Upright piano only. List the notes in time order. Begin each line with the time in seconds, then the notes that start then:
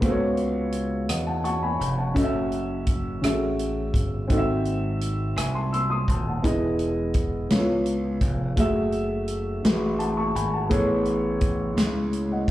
0.01 C#3 B3 F#4 A4 C5
0.11 C#5
1.09 D#5 F#5
1.27 F#5 A5
1.44 F#5 A5 C#6
1.63 G#5 B5
1.80 B5
1.98 F#5 A5
2.14 C#4 F#4 A4 D#5
2.24 E5
3.21 C#4 F#4 G#4 E5
3.30 A4
4.28 G#2 C4 F#4 A4 D#5
4.38 E5
5.37 E5 G#5
5.55 A5 C6
5.73 C6 E6
5.90 C6 D#6
6.09 A5 C6
6.27 F#5 A5
6.42 E3 B3 E4 G#4 D#5
7.49 C#3 B3 E4 A4 C#5
7.56 F4
8.56 A3 F#4 G#4 E5
9.62 A3 F#4 G#4 B4
9.99 F#5 A5
10.17 A5 C#6
10.35 G#5 B5
10.53 F#5 A5
10.69 A2 B3 G#4 A4 C#5
12.32 D#5 F#5